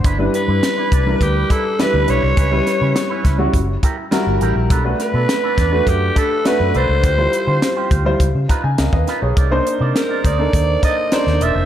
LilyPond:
<<
  \new Staff \with { instrumentName = "Alto saxophone" } { \time 4/4 \key b \phrygian \tempo 4 = 103 r8 b'4. g'8 a'8 b'8 cis''8~ | cis''4. r2 r8 | r8 b'4. g'8 a'8 b'8 c''8~ | c''4. r2 r8 |
r4 bes'8 d''4 ees''8 d''8 e''8 | }
  \new Staff \with { instrumentName = "Clean electric guitar" } { \time 4/4 \key b \phrygian <d' e' b'>16 r8 <d' e' b'>16 r16 <d' e' b'>16 <d' e' d''>16 r8. <d' e' b'>16 r8. <d' e' b'>16 r16 | <cis' e' b'>16 r8 <cis' e' b'>16 r16 <cis' e' b'>16 <cis' e' b'>16 r8. <e' g' ais'>16 r8. <e' g' ais'>16 r16 | <d' a' b'>16 r8 <d' a' b'>16 r16 <d' a' b'>16 <d' a' d''>16 r8. <d' a' b'>16 r8. <d' a' b'>16 r16 | <f' g' c''>16 r8 <f' g' c''>16 r16 <f' g' c''>16 <f' g' c''>16 r8. <dis' eis' b'>16 r8. <dis' eis' b'>16 r16 |
<ees' bes' d''>16 r8 <ees' bes' d''>16 r16 <ees' bes' d''>16 <ees' bes' ees''>16 r8. <ees' bes' d''>16 r8. <ees' bes' d''>16 r16 | }
  \new Staff \with { instrumentName = "Grand piano" } { \time 4/4 \key b \phrygian r16 <g d' e' b'>4~ <g d' e' b'>16 r16 <g d' e' bes' b'>4 r16 <g d' e' b'>4 | r16 <g cis' e' b'>4~ <g cis' e' b'>16 r16 <g cis' e' fis'>16 r4 <g e' fis' ais'>4 | r16 <a d' fis' b'>4~ <a d' fis' b'>16 r16 <a d' fis' b'>4 r16 <a d' fis' b'>4 | r16 <g e' f' c''>4~ <g e' f' c''>16 r16 <g e' f' c''>16 r8 bes''16 gis''16 <bes' dis'' eis''>16 <b' dis'' eis''>8 <gis' cis''>16~ |
<gis' cis''>16 <bes d' ees' c''>4~ <bes d' ees' c''>16 r16 <bes d' ees' a'>4 r16 <bes d' ees' c''>4 | }
  \new Staff \with { instrumentName = "Fingered electric bass" } { \clef bass \time 4/4 \key b \phrygian g,,8 r16 g,16 r8 c,8 d,8 r8. d,16 b,,16 c,16 | cis,8 r16 cis16 r8 cis,8 fis,,8 r8. g,,16 a,,16 ais,,16 | b,,8 r16 b,16 r8 e,8 fis,8 r8. fis,16 c,16 cis,16 | d,8 r16 d16 r8 d,8 cis,16 cis16 r16 cis16 cis,16 dis,16 r16 b,,16 |
c,8 r16 c16 r8 d,8 ees,8 r8. ees,16 e,,16 f,,16 | }
  \new DrumStaff \with { instrumentName = "Drums" } \drummode { \time 4/4 <hh bd>8 hh8 <hh sn>8 <hh bd>8 <hh bd>8 <hh bd>8 <hh sn>8 hh8 | <hh bd>8 <hh sn>8 <hh sn>8 <hh bd sn>8 <hh bd>8 <hh bd>8 <hh sn>8 hh8 | <hh bd>8 <hh sn>8 <hh sn>8 <hh bd sn>8 <hh bd>8 <hh bd>8 <hh sn>8 hh8 | <hh bd>8 hh8 <hh sn>8 <hh bd>8 <hh bd>8 <hh bd>8 <hh sn>16 bd16 <hh sn>8 |
<hh bd>8 hh8 <hh sn>8 <hh bd>8 <hh bd>8 <hh bd>8 <hh sn>16 sn16 hh8 | }
>>